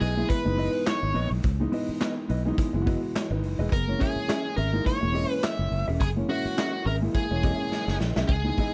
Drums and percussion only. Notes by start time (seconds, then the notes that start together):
0.02 closed hi-hat
0.30 kick, closed hi-hat
0.58 open hi-hat
0.87 snare, clap, closed hi-hat
1.15 open hi-hat
1.44 kick, closed hi-hat
1.73 open hi-hat
2.01 snare, clap, closed hi-hat
2.30 closed hi-hat
2.58 kick, closed hi-hat
2.87 kick, open hi-hat
3.16 snare, clap, closed hi-hat
3.44 open hi-hat
3.72 kick, closed hi-hat
4.01 kick, open hi-hat
4.29 snare, clap, closed hi-hat
4.58 closed hi-hat
4.86 kick, closed hi-hat
5.15 open hi-hat
5.44 snare, clap, closed hi-hat
5.72 open hi-hat
6.00 kick, closed hi-hat
6.29 open hi-hat
6.58 snare, clap, closed hi-hat
6.87 open hi-hat
7.15 kick, closed hi-hat
7.43 kick, open hi-hat
7.72 snare
7.88 snare
8.01 snare
8.16 snare
8.29 kick, closed hi-hat
8.57 kick, open hi-hat